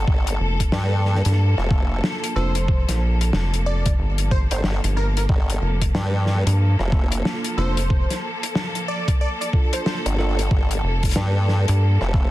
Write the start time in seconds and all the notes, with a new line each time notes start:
Already playing: F3 A#3 A4
0.07 G1, kick
0.27 closed hi-hat
0.40 F1
0.60 kick, closed hi-hat
0.72 G2, snare
1.05 snare
1.15 snare
1.25 G2, snare, closed hi-hat
1.31 snare
1.58 F1, cross-stick
1.71 A#3 D4 F4 A4, kick, cross-stick
2.04 snare
2.24 closed hi-hat
2.36 F1 A#3 D4 F4 A4 C5, cross-stick
2.55 closed hi-hat
2.68 kick
2.88 A#1, snare, closed hi-hat
3.21 closed hi-hat
3.33 F1, snare
3.54 closed hi-hat
3.66 D5
3.86 kick, cross-stick, closed hi-hat
3.99 G1
4.18 closed hi-hat
4.31 C5, kick
4.51 G1 C5, closed hi-hat
4.64 G1, snare
4.84 G1, cross-stick, closed hi-hat
4.97 A#4, cross-stick
5.17 A#4, closed hi-hat
5.29 G1 A4, kick
5.50 closed hi-hat
5.62 F1
5.82 kick, closed hi-hat
5.95 G2, snare
6.26 snare
6.47 G2, closed hi-hat
6.79 F1, cross-stick
6.92 A#3 D4 F4 A4, kick, cross-stick
7.12 closed hi-hat
7.25 snare
7.44 closed hi-hat
7.57 F1 A#3 D4 F4 A4 C5, cross-stick
7.77 closed hi-hat
7.90 kick
8.10 snare, closed hi-hat
8.43 closed hi-hat
8.55 snare
8.75 closed hi-hat
8.88 D5
9.08 kick, closed hi-hat
9.21 D5
9.41 D5, closed hi-hat
9.53 A#3 D4 F4 A4, kick
9.73 C5, closed hi-hat
9.86 C5, snare
9.96 cross-stick
10.06 G1, closed hi-hat
10.18 A#3 D4 F4 A4, cross-stick
10.39 closed hi-hat
10.51 G1, kick
10.71 closed hi-hat
10.84 F1
11.03 kick, closed hi-hat
11.05 closed hi-hat
11.09 closed hi-hat
11.11 closed hi-hat
11.13 G2, snare, closed hi-hat
11.49 snare
11.68 G2, closed hi-hat
12.01 F1, cross-stick
12.14 A#3 D4 F4 A4, kick, cross-stick